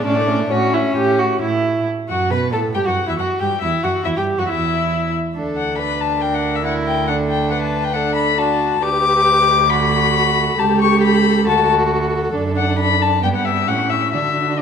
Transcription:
0.04 0.45 A2 medium
0.04 0.18 C#4 soft
0.04 0.52 D4 medium
0.04 0.50 D5 medium
0.16 0.29 A3 soft
0.28 0.41 C#4 soft
0.39 0.50 A3 soft
0.50 0.91 A2 medium
0.50 1.41 C#4 medium
0.50 0.75 F#4 medium
0.50 1.40 C#5 soft
0.73 0.96 E4 medium
0.96 1.36 A2 medium
0.96 1.21 G4 medium
1.19 1.41 F#4 medium
1.42 1.82 A2 soft
1.42 1.86 E4 soft
2.08 2.32 F#2 soft
2.08 2.32 F#4 soft
2.08 2.30 F#5 soft
2.30 2.55 B2 medium
2.30 2.52 B4 medium
2.30 2.39 B5 medium
2.52 2.77 A2 soft
2.52 2.74 A4 soft
2.52 2.61 A4 soft
2.52 2.61 A5 soft
2.75 2.86 G2 soft
2.75 2.87 G4 soft
2.75 2.79 G5 soft
2.85 2.95 F#2 soft
2.85 3.07 F#4 soft
2.85 3.08 F#5 soft
3.07 3.12 E2 soft
3.07 3.12 E4 soft
3.07 3.18 E4 soft
3.07 3.13 E5 soft
3.19 3.27 F#2 soft
3.19 3.40 F#4 soft
3.19 3.42 F#4 soft
3.19 3.27 F#5 soft
3.40 3.62 G2 soft
3.40 3.61 G4 soft
3.40 3.48 G4 soft
3.40 3.61 G5 soft
3.61 3.70 E2 soft
3.61 3.85 E4 soft
3.61 3.70 E4 soft
3.61 3.83 E5 soft
3.84 3.92 F#2 soft
3.84 4.05 F#4 soft
3.84 4.07 F#4 soft
3.84 3.92 F#5 soft
4.05 4.10 E2 soft
4.05 4.18 E4 soft
4.05 4.16 E4 soft
4.05 4.09 E5 soft
4.16 4.38 G2 soft
4.16 4.24 G4 soft
4.16 4.40 G4 soft
4.16 4.25 G5 soft
4.38 4.43 F#2 soft
4.38 4.50 F#4 soft
4.38 4.43 F#4 soft
4.38 4.49 F#5 soft
4.49 5.13 E2 soft
4.49 5.14 E4 soft
4.49 5.13 E4 soft
4.49 5.13 E5 soft
5.35 8.79 D2 soft
5.35 5.76 D4 soft
5.35 5.80 A4 soft
5.57 5.77 F#5 soft
5.78 6.64 D4 soft
5.78 6.21 B4 soft
5.78 6.02 B5 medium
6.01 6.23 A5 medium
6.21 7.10 A#4 soft
6.21 6.35 G5 medium
6.34 6.57 F#5 medium
6.55 6.64 E5 soft
6.65 7.10 E4 soft
6.65 6.73 F#5 medium
6.87 7.07 G5 medium
7.07 7.94 D4 soft
7.07 7.53 A4 soft
7.07 7.15 F#5 medium
7.30 7.50 G5 medium
7.51 7.97 B4 soft
7.51 7.62 F#5 medium
7.62 7.86 A5 medium
7.84 7.95 G5 medium
7.93 8.37 D4 soft
7.93 8.39 A4 soft
7.93 8.15 F#5 medium
8.15 8.39 B5 medium
8.38 8.82 D4 soft
8.38 8.83 F#4 soft
8.38 8.84 A5 medium
8.83 10.55 D2 medium
8.83 9.67 G4 soft
8.83 9.67 B4 soft
8.83 9.72 D6 medium
9.70 10.55 F#4 medium
9.70 13.19 A4 medium
9.70 10.60 B5 loud
10.59 11.48 C#2 medium
10.59 11.43 G4 medium
10.59 10.81 A5 medium
10.82 11.02 C#6 medium
11.03 11.46 B5 medium
11.47 12.34 D2 medium
11.47 12.31 F#4 medium
11.47 11.69 A5 medium
12.35 13.24 F#2 medium
12.35 13.19 D4 soft
12.57 12.77 F#5 medium
12.79 13.03 B5 medium
13.02 13.23 A5 medium
13.23 13.69 G2 medium
13.23 13.65 B3 soft
13.23 14.10 G4 soft
13.23 13.28 G5 medium
13.35 13.47 F#5 medium
13.45 13.69 E5 medium
13.68 14.16 A2 soft
13.68 14.11 C#4 soft
13.68 13.91 F#5 medium
13.90 14.12 E5 medium
14.12 14.62 D3 soft
14.12 14.62 D4 soft
14.12 14.62 F#4 soft
14.12 14.61 E5 medium

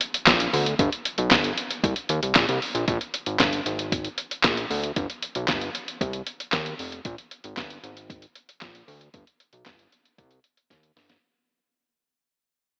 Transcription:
0.01 closed hi-hat medium
0.14 closed hi-hat medium
0.27 0.48 A#1 medium
0.27 kick loud
0.27 snare loud
0.27 clap loud
0.27 closed hi-hat loud
0.40 closed hi-hat medium
0.53 0.74 D2 medium
0.53 open hi-hat medium
0.66 closed hi-hat medium
0.79 0.90 G1 loud
0.79 kick loud
0.79 closed hi-hat medium
0.92 closed hi-hat medium
1.05 closed hi-hat medium
1.18 1.33 B1 medium
1.18 closed hi-hat medium
1.31 1.52 G1 loud
1.31 kick loud
1.31 snare loud
1.31 clap medium
1.31 closed hi-hat medium
1.44 closed hi-hat medium
1.58 closed hi-hat medium
1.71 closed hi-hat medium
1.84 1.94 C2 loud
1.84 kick loud
1.84 closed hi-hat loud
1.96 closed hi-hat medium
2.09 2.20 D#2 medium
2.09 closed hi-hat medium
2.23 2.33 C2 medium
2.23 closed hi-hat medium
2.35 2.46 A#1 loud
2.35 kick loud
2.35 snare loud
2.35 clap loud
2.35 closed hi-hat loud
2.49 2.59 C2 loud
2.49 closed hi-hat medium
2.62 open hi-hat medium
2.75 2.85 A#1 loud
2.75 closed hi-hat medium
2.88 2.98 A#1 loud
2.88 kick loud
2.88 closed hi-hat medium
3.01 closed hi-hat medium
3.14 closed hi-hat medium
3.26 3.37 G#1 medium
3.26 closed hi-hat medium
3.40 3.61 G1 loud
3.40 kick loud
3.40 snare loud
3.40 clap medium
3.40 closed hi-hat medium
3.53 closed hi-hat medium
3.66 4.08 G#1 medium
3.66 closed hi-hat medium
3.79 closed hi-hat medium
3.92 kick loud
3.92 closed hi-hat loud
4.05 closed hi-hat medium
4.18 closed hi-hat medium
4.31 closed hi-hat medium
4.44 4.66 A#1 medium
4.44 kick loud
4.44 snare loud
4.44 clap loud
4.44 closed hi-hat loud
4.57 closed hi-hat medium
4.70 4.92 D2 loud
4.70 open hi-hat medium
4.84 closed hi-hat medium
4.96 5.07 G1 loud
4.96 kick loud
4.96 closed hi-hat medium
5.10 closed hi-hat medium
5.22 closed hi-hat medium
5.35 5.46 B1 loud
5.35 closed hi-hat medium
5.48 5.70 G1 loud
5.48 kick loud
5.48 snare loud
5.48 clap medium
5.48 closed hi-hat medium
5.61 closed hi-hat medium
5.75 closed hi-hat medium
5.88 closed hi-hat medium
6.01 6.22 C2 loud
6.01 kick loud
6.01 closed hi-hat medium
6.13 closed hi-hat medium
6.27 closed hi-hat medium
6.40 closed hi-hat medium
6.52 6.74 D#2 loud
6.52 kick loud
6.52 snare loud
6.52 clap loud
6.52 closed hi-hat medium
6.66 closed hi-hat medium
6.79 7.00 F1 medium
6.79 open hi-hat medium
6.92 closed hi-hat medium
7.05 7.16 A#1 loud
7.05 kick loud
7.05 closed hi-hat medium
7.18 closed hi-hat medium
7.31 closed hi-hat medium
7.44 7.55 G#1 medium
7.44 closed hi-hat medium
7.57 7.79 G1 loud
7.57 kick loud
7.57 snare loud
7.57 clap medium
7.57 closed hi-hat medium
7.70 closed hi-hat medium
7.83 8.26 G#1 loud
7.83 closed hi-hat medium
7.97 closed hi-hat medium
8.10 kick loud
8.10 closed hi-hat loud
8.22 closed hi-hat medium
8.35 closed hi-hat medium
8.49 closed hi-hat medium
8.61 8.83 A#1 medium
8.61 kick loud
8.61 snare loud
8.61 clap loud
8.61 closed hi-hat loud
8.75 closed hi-hat medium
8.88 9.09 D2 loud
8.88 open hi-hat medium
9.01 closed hi-hat medium
9.14 9.25 G1 loud
9.14 kick loud
9.14 closed hi-hat medium
9.27 closed hi-hat medium
9.40 closed hi-hat medium
9.53 9.64 B1 medium
9.53 closed hi-hat medium
9.66 9.87 G1 loud
9.66 kick loud
9.66 snare loud
9.66 clap medium
9.66 closed hi-hat medium
9.79 closed hi-hat medium
9.92 closed hi-hat medium
10.05 closed hi-hat medium
10.18 10.40 C2 loud
10.18 kick loud
10.18 closed hi-hat loud
10.31 closed hi-hat medium
10.44 closed hi-hat medium
10.57 closed hi-hat medium
10.70 10.92 D#2 loud
10.70 kick loud
10.70 snare medium
10.70 closed hi-hat medium
10.83 closed hi-hat medium
10.96 11.18 G1 loud
10.96 snare medium
10.96 open hi-hat medium
11.09 snare loud
11.09 closed hi-hat medium

